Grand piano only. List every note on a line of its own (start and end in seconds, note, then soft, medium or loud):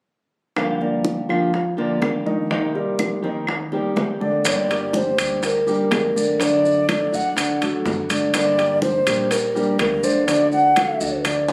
0.81 1.21 A#3 medium
0.81 1.21 A#4 medium
0.81 1.21 D5 medium
1.29 1.69 F3 medium
1.29 1.70 F4 medium
1.29 1.70 F5 medium
1.78 2.18 A#3 medium
1.78 2.18 A#4 medium
1.78 2.18 D5 medium
2.26 2.46 D#3 medium
2.26 2.46 D#4 medium
2.26 2.47 D#5 medium
2.51 2.71 D#3 medium
2.51 2.71 D#4 medium
2.51 2.71 D#5 medium
2.75 3.15 G3 medium
2.75 3.15 G4 medium
2.75 3.15 A#4 medium
3.24 3.64 D#3 medium
3.24 3.64 D#4 medium
3.24 3.64 D#5 medium
3.72 4.12 G3 medium
3.72 4.13 G4 medium
3.72 4.13 A#4 medium
4.20 4.41 D3 medium
4.20 4.41 D4 medium
4.20 4.41 D5 medium
4.70 5.10 G3 medium
4.70 5.10 G4 medium
4.70 5.10 A#4 medium
5.18 5.58 G3 medium
5.18 5.59 G4 medium
5.18 5.59 A#4 medium
5.67 6.07 G3 medium
5.67 6.07 G4 medium
5.67 6.07 A#4 medium
6.16 6.36 D3 medium
6.16 6.36 D4 medium
6.16 6.36 D5 medium
6.40 6.79 D3 medium
6.40 6.80 D4 medium
6.40 6.80 D5 medium
6.88 7.28 F#3 medium
6.88 7.28 F#4 medium
6.88 7.28 A4 medium
7.37 7.57 D3 medium
7.37 7.57 D4 medium
7.37 7.57 D5 medium
7.61 8.01 F#3 medium
7.61 8.01 F#4 medium
7.61 8.01 A4 medium
8.09 8.49 D3 medium
8.09 8.50 D4 medium
8.09 8.50 D5 medium
8.58 8.98 G3 medium
8.58 8.98 G4 medium
8.58 8.98 A#4 medium
9.07 9.46 G3 medium
9.07 9.47 G4 medium
9.07 9.47 A#4 medium
9.55 9.95 G3 medium
9.55 9.95 G4 medium
9.55 9.95 A#4 medium
10.03 10.24 D3 medium
10.03 10.24 D4 medium
10.03 10.24 D5 medium
10.27 10.68 D3 medium
10.27 10.68 D4 medium
10.27 10.68 D5 medium
10.77 11.16 F#3 medium
10.77 11.17 F#4 medium
10.77 11.17 A4 medium
11.25 11.45 D3 medium
11.25 11.45 D4 medium
11.25 11.45 D5 medium
11.49 11.53 F#3 medium